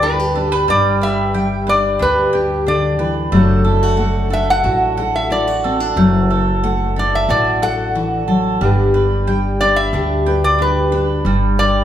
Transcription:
Already playing: upright bass D2, steel-string acoustic guitar G2 G3 D4 B4, mandolin G3 B4 G5
0.02 mandolin D4, steel-string acoustic guitar E4, resonator guitar played with a steel bar B4
0.19 steel-string acoustic guitar G4
0.36 steel-string acoustic guitar D4, mandolin A4
0.52 mandolin B4
0.68 upright bass G1, steel-string acoustic guitar G2, mandolin G3, resonator guitar played with a steel bar D5
1.01 steel-string acoustic guitar G4, mandolin B4, resonator guitar played with a steel bar E5
1.34 steel-string acoustic guitar G3, mandolin G5
1.67 steel-string acoustic guitar D4, mandolin B4, resonator guitar played with a steel bar D5
1.99 upright bass D2, mandolin D4, steel-string acoustic guitar G4, resonator guitar played with a steel bar B4
2.33 steel-string acoustic guitar G4, mandolin G5
2.67 steel-string acoustic guitar D3, mandolin D4, resonator guitar played with a steel bar D5
2.99 steel-string acoustic guitar E3, mandolin B4
3.32 upright bass F#1, steel-string acoustic guitar F#3 A3 D4 F#4, mandolin A3
3.36 steel-string acoustic guitar A4
3.65 steel-string acoustic guitar E4, mandolin A4
3.83 steel-string acoustic guitar F#4
3.97 steel-string acoustic guitar A3, mandolin F#5
4.30 steel-string acoustic guitar D4, mandolin A4, resonator guitar played with a steel bar E5
4.50 resonator guitar played with a steel bar F#5
4.64 upright bass A1, mandolin F#4, steel-string acoustic guitar F#4
4.97 steel-string acoustic guitar A4, mandolin F#5
5.16 resonator guitar played with a steel bar E5
5.30 steel-string acoustic guitar E4, mandolin F#4, resonator guitar played with a steel bar D5
5.47 steel-string acoustic guitar F#4
5.64 steel-string acoustic guitar C4, mandolin A4
5.80 steel-string acoustic guitar D4
5.96 upright bass F#1, steel-string acoustic guitar F#3, mandolin A3
6.30 steel-string acoustic guitar F#4, mandolin A4
6.64 steel-string acoustic guitar A3, mandolin F#5
6.96 steel-string acoustic guitar D4, mandolin A4, resonator guitar played with a steel bar D5
7.15 resonator guitar played with a steel bar E5
7.29 upright bass A1, steel-string acoustic guitar F#4, mandolin F#4, resonator guitar played with a steel bar D5
7.62 steel-string acoustic guitar A4, mandolin F#5, resonator guitar played with a steel bar F#5
7.95 steel-string acoustic guitar E3, mandolin F#4
8.28 steel-string acoustic guitar F#3, mandolin A4
8.61 upright bass G1, steel-string acoustic guitar G2 G3 D4 G4 B4, mandolin G3
8.94 steel-string acoustic guitar G4, mandolin B4
9.28 steel-string acoustic guitar G3, mandolin G5
9.61 steel-string acoustic guitar D4, mandolin B4, resonator guitar played with a steel bar D5
9.76 resonator guitar played with a steel bar E5
9.93 upright bass D2, mandolin D4, steel-string acoustic guitar G4
10.26 steel-string acoustic guitar B4, mandolin G5
10.44 resonator guitar played with a steel bar D5
10.59 mandolin D4, steel-string acoustic guitar G4, resonator guitar played with a steel bar B4
10.92 steel-string acoustic guitar D4, mandolin B4
11.25 upright bass G1, steel-string acoustic guitar G2, mandolin G3
11.58 steel-string acoustic guitar G4, mandolin B4, resonator guitar played with a steel bar D5

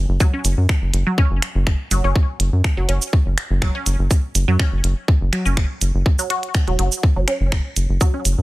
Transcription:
0.09 analog synth bass F#1
0.20 synth arpeggio sound F#3, kick, shaker
0.34 synth arpeggio sound C#4
0.45 analog synth bass F#1, closed hi-hat, shaker
0.58 analog synth bass F#2
0.69 finger snap, kick
0.82 analog synth bass F#1
0.93 analog synth bass F#1, closed hi-hat
1.07 synth arpeggio sound F#3
1.18 synth arpeggio sound C#4, kick
1.31 analog synth bass F#1
1.42 finger snap, closed hi-hat
1.55 analog synth bass F#1
1.67 finger snap, kick
1.91 analog synth bass F#1, synth arpeggio sound F#3, closed hi-hat, shaker
2.04 analog synth bass F#1, synth arpeggio sound C#4
2.16 kick
2.40 analog synth bass F#1, closed hi-hat
2.53 analog synth bass F#2
2.64 finger snap, kick
2.77 analog synth bass F#1, synth arpeggio sound F#3
2.89 analog synth bass F#1, synth arpeggio sound C#4, closed hi-hat
3.02 shaker
3.13 kick
3.26 analog synth bass F#1
3.38 finger snap, closed hi-hat
3.50 analog synth bass F#1
3.62 synth arpeggio sound F#3, finger snap, kick
3.75 synth arpeggio sound C#4
3.86 analog synth bass F#1, closed hi-hat, shaker
3.99 analog synth bass F#1
4.11 kick, shaker
4.35 analog synth bass F#1, closed hi-hat, shaker
4.48 analog synth bass F#2, synth arpeggio sound F#3
4.59 synth arpeggio sound C#4, finger snap, kick
4.72 analog synth bass F#1
4.84 analog synth bass F#1, closed hi-hat
5.08 kick
5.21 analog synth bass F#1
5.33 synth arpeggio sound F#3, finger snap, closed hi-hat
5.46 analog synth bass F#1, synth arpeggio sound C#4, shaker
5.57 finger snap, kick
5.81 analog synth bass F#1, closed hi-hat, shaker
5.95 analog synth bass F#1
6.06 kick
6.19 synth arpeggio sound F#3, shaker
6.30 synth arpeggio sound F#4, closed hi-hat
6.43 closed hi-hat
6.55 finger snap, kick, shaker
6.68 analog synth bass E1, synth arpeggio sound F#3, closed hi-hat
6.79 analog synth bass F#1, synth arpeggio sound F#3, closed hi-hat
6.92 shaker
7.03 kick
7.16 analog synth bass F#1, synth arpeggio sound F#3
7.28 synth arpeggio sound C#4, finger snap, closed hi-hat
7.41 analog synth bass F#1
7.52 finger snap, kick
7.76 analog synth bass F#1, closed hi-hat, shaker
7.89 analog synth bass F#1
8.01 synth arpeggio sound F#3, kick, shaker
8.14 synth arpeggio sound C#4
8.25 analog synth bass F#1, closed hi-hat, shaker
8.38 analog synth bass F#2

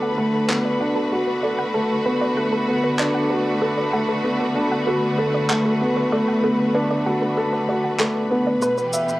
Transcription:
Already playing: string section D3 A3 B3 F#4 B4, felt piano A3 B3 D4 F#4 A4
0.02 synth arpeggio sound F#5
0.18 felt piano A3, synth arpeggio sound A4
0.49 felt piano B3, synth arpeggio sound B4, clap
0.65 synth arpeggio sound D5
0.81 felt piano D4, synth arpeggio sound F#5
0.96 synth arpeggio sound A4
1.12 felt piano F#4
1.27 synth arpeggio sound B4
1.43 felt piano A4, synth arpeggio sound D5
1.59 synth arpeggio sound F#5
1.74 felt piano A3, synth arpeggio sound A4
2.06 felt piano B3, synth arpeggio sound B4
2.21 synth arpeggio sound D5
2.37 felt piano A3, synth arpeggio sound F#5
2.52 synth arpeggio sound A4
2.68 felt piano B3
2.84 synth arpeggio sound B4
2.99 felt piano D4, synth arpeggio sound D5, clap
3.15 synth arpeggio sound F#5
3.30 felt piano F#4, synth arpeggio sound A4
3.61 felt piano A4, synth arpeggio sound B4
3.78 synth arpeggio sound D5
3.93 felt piano A3, synth arpeggio sound F#5
4.09 synth arpeggio sound A4
4.24 felt piano B3
4.40 synth arpeggio sound B4
4.55 felt piano D4, synth arpeggio sound D5
4.72 synth arpeggio sound F#5
4.87 felt piano F#4, synth arpeggio sound A4
5.18 felt piano A4, synth arpeggio sound B4
5.34 synth arpeggio sound D5
5.50 felt piano A3, synth arpeggio sound F#5, clap
5.66 synth arpeggio sound A4
5.81 felt piano B3
5.97 synth arpeggio sound B4
6.12 felt piano A3, synth arpeggio sound D5
6.28 synth arpeggio sound F#5
6.43 felt piano B3, synth arpeggio sound A4
6.74 felt piano D4, synth arpeggio sound B4
6.91 synth arpeggio sound D5
7.06 felt piano F#4, synth arpeggio sound F#5
7.22 synth arpeggio sound A4
7.37 felt piano A4
7.53 synth arpeggio sound B4
7.69 felt piano F#4, synth arpeggio sound D5
7.84 synth arpeggio sound F#5
8.00 felt piano A3, synth arpeggio sound A4, clap
8.31 felt piano B3, synth arpeggio sound B4
8.47 synth arpeggio sound D5
8.62 string section B2, felt piano B4, synth arpeggio sound B5, shaker
8.78 string section E3 G4, synth arpeggio sound B4, shaker
8.93 felt piano E5, shaker
8.98 string section B3
9.09 synth arpeggio sound E5, shaker

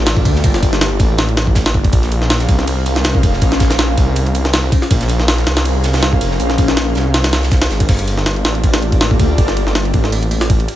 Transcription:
Already playing: detuned saw bass A1
0.06 snare, closed hi-hat, ride
0.17 kick
0.25 detuned saw bass D2, kick, closed hi-hat, ride
0.36 snare
0.44 detuned saw bass G1, kick, closed hi-hat, ride
0.54 snare
0.63 kick, closed hi-hat, ride
0.73 snare
0.81 snare, closed hi-hat, ride
0.99 detuned saw bass A1, kick, closed hi-hat, ride
1.18 snare, closed hi-hat, ride
1.29 ride
1.37 snare, closed hi-hat, ride
1.47 kick
1.55 kick, snare, closed hi-hat, ride
1.66 detuned saw bass A1, snare, ride
1.74 detuned saw bass G1, kick, closed hi-hat
1.84 kick, ride
1.93 detuned saw bass A#1, ambient pad C#4 G#4 A#4 C5 F5, kick, closed hi-hat, ride
2.03 snare, ride
2.12 closed hi-hat, ride
2.22 snare
2.30 snare, closed hi-hat, ride
2.40 snare, ride
2.49 detuned saw bass C2, kick, closed hi-hat, ride
2.59 snare
2.67 open hi-hat, ride
2.86 closed hi-hat, ride
2.95 snare, closed hi-hat
3.04 snare, closed hi-hat, ride
3.15 kick
3.23 detuned saw bass F1, kick, closed hi-hat, ride
3.33 snare
3.42 detuned saw bass A#1, kick, closed hi-hat, ride
3.52 snare
3.60 kick, snare, closed hi-hat, ride
3.70 snare, closed hi-hat
3.79 snare, closed hi-hat, ride
3.98 detuned saw bass C2, kick, closed hi-hat, ride
4.16 closed hi-hat, ride
4.26 ride
4.35 closed hi-hat, ride
4.45 snare
4.53 snare, closed hi-hat, ride
4.72 kick, closed hi-hat, ride
4.82 snare
4.91 detuned saw bass A#1, ambient pad C#4 G#4 A#4 C5 F5, kick, closed hi-hat, ride
5.01 snare, ride
5.08 closed hi-hat, ride
5.20 snare
5.28 snare, closed hi-hat, ride
5.38 snare, ride
5.46 detuned saw bass C2, snare, closed hi-hat, ride
5.57 snare, ride
5.65 open hi-hat, ride
5.84 snare, closed hi-hat, ride
5.93 snare, closed hi-hat
5.97 snare, closed hi-hat
6.03 snare, ride
6.13 kick
6.21 detuned saw bass F1, closed hi-hat, ride
6.31 snare
6.40 detuned saw bass A#1, closed hi-hat, ride
6.50 snare
6.58 kick, closed hi-hat, ride
6.68 snare
6.77 snare, closed hi-hat, ride
6.95 detuned saw bass C2, snare, closed hi-hat
7.14 snare, closed hi-hat, ride
7.24 snare, closed hi-hat, ride
7.33 snare, closed hi-hat, ride
7.43 snare, closed hi-hat
7.51 kick, snare, closed hi-hat, ride
7.61 snare, closed hi-hat, ride
7.70 detuned saw bass G#1, snare, closed hi-hat
7.80 kick, ride
7.89 detuned saw bass G1, ambient pad A#3 F4 G4 A4 D5, kick, crash, ride
7.99 ride
8.08 ride
8.18 snare
8.26 snare, ride
8.36 ride
8.45 detuned saw bass A1, snare, ride
8.55 ride
8.64 kick, ride
8.74 snare, ride
8.82 ride
8.92 kick, ride
9.01 snare, ride
9.11 kick
9.20 detuned saw bass D2, kick, ride
9.38 detuned saw bass G1, kick, ride
9.48 snare
9.57 ride
9.67 snare
9.75 snare, ride
9.85 ride
9.94 detuned saw bass A1, kick, ride
10.04 snare
10.12 ride
10.23 ride
10.31 ride
10.41 snare
10.50 kick, ride
10.60 ride
10.68 ride

